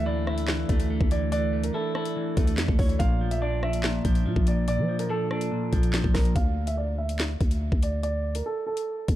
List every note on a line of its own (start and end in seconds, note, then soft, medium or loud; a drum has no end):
0.00 0.65 D2 loud
0.00 0.47 E3 medium
0.00 0.68 A3 medium
0.00 2.97 A3 medium
0.00 2.97 D4 medium
0.00 2.96 A4 medium
0.00 6.32 D5 medium
0.06 0.26 E4 loud
0.06 0.22 D5 medium
0.27 1.32 E4 loud
0.27 1.07 E5 medium
0.27 cross-stick loud
0.38 closed hi-hat medium
0.48 1.10 E3 medium
0.48 snare loud
0.48 clap loud
0.69 0.99 D2 loud
0.69 0.89 A3 medium
0.69 kick medium
0.69 closed hi-hat medium
0.80 closed hi-hat medium
0.90 1.52 A3 medium
1.01 1.71 D2 loud
1.01 kick loud
1.11 1.31 E3 medium
1.11 1.28 D5 medium
1.11 closed hi-hat medium
1.32 2.15 E3 medium
1.32 1.62 D5 loud
1.32 closed hi-hat medium
1.53 2.36 A3 medium
1.64 1.72 A#4 medium
1.64 closed hi-hat medium
1.74 1.94 E4 loud
1.74 1.91 A4 medium
1.95 3.00 E4 medium
1.95 2.75 A4 medium
1.95 cross-stick loud
2.05 closed hi-hat medium
2.16 2.78 E3 medium
2.37 2.59 D2 loud
2.37 2.57 A3 medium
2.37 kick medium
2.37 closed hi-hat medium
2.47 closed hi-hat medium
2.58 2.68 F2 loud
2.58 3.00 A3 medium
2.58 snare loud
2.58 clap medium
2.58 closed hi-hat medium
2.68 2.78 D2 loud
2.68 kick loud
2.79 2.99 D2 loud
2.79 3.00 E3 medium
2.79 2.95 C#5 medium
2.79 kick loud
2.79 open hi-hat medium
2.89 closed hi-hat medium
2.99 4.01 A#1 loud
2.99 3.82 A#2 loud
2.99 6.32 A#3 medium
2.99 6.32 D4 medium
2.99 6.32 F4 medium
2.99 3.29 F5 loud
2.99 kick loud
2.99 closed hi-hat medium
3.21 4.04 F3 medium
3.31 3.39 E5 medium
3.31 closed hi-hat medium
3.42 3.62 D4 loud
3.42 3.58 D5 medium
3.63 4.68 D4 medium
3.63 4.43 E5 medium
3.63 cross-stick loud
3.73 closed hi-hat medium
3.84 4.46 A#2 medium
3.84 snare loud
3.84 clap loud
4.05 4.27 A#1 loud
4.05 4.25 F3 medium
4.05 kick medium
4.05 closed hi-hat medium
4.15 closed hi-hat medium
4.26 4.36 A#2 medium
4.26 4.87 F3 medium
4.36 4.80 A#1 loud
4.36 kick loud
4.47 4.67 A#2 medium
4.47 4.64 D5 medium
4.47 closed hi-hat medium
4.68 5.50 A#2 loud
4.68 4.97 D5 loud
4.68 closed hi-hat medium
4.78 5.08 F3 loud
4.89 5.71 F3 medium
4.99 5.07 A#4 medium
4.99 closed hi-hat medium
5.09 5.29 D4 loud
5.09 5.26 A4 loud
5.31 6.36 D4 medium
5.31 6.11 A4 medium
5.31 cross-stick loud
5.41 closed hi-hat medium
5.51 6.13 A#2 medium
5.73 6.03 A#1 loud
5.73 5.93 F3 medium
5.73 kick medium
5.73 closed hi-hat medium
5.83 closed hi-hat medium
5.93 6.36 F3 medium
5.93 snare loud
5.93 clap medium
5.93 closed hi-hat medium
6.04 6.14 A#1 loud
6.04 kick loud
6.14 6.35 A#1 loud
6.14 6.36 A#2 medium
6.14 6.31 A#4 medium
6.14 kick loud
6.14 cross-stick loud
6.14 snare medium
6.14 open hi-hat medium
6.25 closed hi-hat medium
6.35 7.37 D2 loud
6.35 6.65 F5 medium
6.35 kick loud
6.35 closed hi-hat medium
6.67 6.75 E5 medium
6.67 closed hi-hat medium
6.77 6.94 D5 medium
6.98 7.78 E5 medium
7.09 closed hi-hat medium
7.19 snare loud
7.19 clap loud
7.41 7.71 D2 loud
7.41 kick medium
7.41 closed hi-hat medium
7.51 closed hi-hat medium
7.72 8.42 D2 loud
7.72 kick loud
7.83 7.99 D5 medium
7.83 closed hi-hat medium
8.03 8.33 D5 loud
8.03 closed hi-hat medium
8.35 8.43 A#4 medium
8.35 closed hi-hat medium
8.46 8.62 A4 medium
8.67 9.16 A4 medium
8.77 closed hi-hat medium
9.08 9.16 D2 loud
9.08 kick medium
9.08 closed hi-hat medium